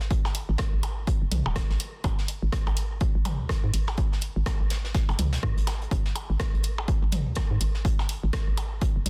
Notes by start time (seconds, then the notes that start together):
Already playing: G#1
0.01 snare
0.11 kick, closed hi-hat
0.25 snare, percussion blips
0.35 closed hi-hat
0.49 G#1
0.58 kick, cross-stick, snare, closed hi-hat
0.73 G#1
0.83 closed hi-hat, percussion blips
1.07 kick, closed hi-hat
1.22 F#1
1.32 B1, closed hi-hat, mid tom
1.46 D#1, percussion blips
1.56 kick, cross-stick, snare, closed hi-hat
1.70 G#1, snare
1.80 closed hi-hat
2.04 G#1, kick, closed hi-hat, percussion blips
2.19 snare
2.28 closed hi-hat
2.42 G#1
2.52 kick, cross-stick, snare, closed hi-hat
2.66 G#1, closed hi-hat, percussion blips
2.77 closed hi-hat
3.00 kick, closed hi-hat
3.15 G#1
3.25 closed hi-hat, mid tom, percussion blips
3.40 D#2
3.49 kick, cross-stick, snare, closed hi-hat
3.64 G#2
3.74 G#1, closed hi-hat
3.87 snare, percussion blips
3.97 kick, closed hi-hat
4.13 snare
4.21 closed hi-hat
4.36 G#1
4.46 kick, cross-stick, snare, closed hi-hat, percussion blips
4.60 G#1
4.70 snare, closed hi-hat
4.84 snare
4.94 kick, snare, closed hi-hat
5.09 F#1, closed hi-hat, percussion blips
5.19 C#2, closed hi-hat, mid tom
5.33 snare, closed hi-hat
5.43 G#2, kick, cross-stick
5.57 G#1, closed hi-hat
5.67 snare, closed hi-hat, percussion blips
5.82 closed hi-hat
5.91 G#1, kick, closed hi-hat
6.05 snare
6.16 closed hi-hat, percussion blips
6.30 G#1
6.39 kick, cross-stick, snare, closed hi-hat
6.54 G#1, closed hi-hat
6.63 closed hi-hat
6.78 percussion blips
6.88 kick, closed hi-hat
7.02 G#1
7.12 closed hi-hat, mid tom
7.27 D#2
7.35 kick, cross-stick, snare, closed hi-hat, percussion blips
7.51 G#2
7.61 G#1, closed hi-hat
7.75 snare
7.85 kick, closed hi-hat
7.99 snare, percussion blips
8.09 closed hi-hat
8.23 G#1
8.33 kick, cross-stick, snare, closed hi-hat
8.48 G#1
8.57 closed hi-hat, percussion blips
8.81 kick, closed hi-hat
8.96 F#1
9.06 B1, closed hi-hat, mid tom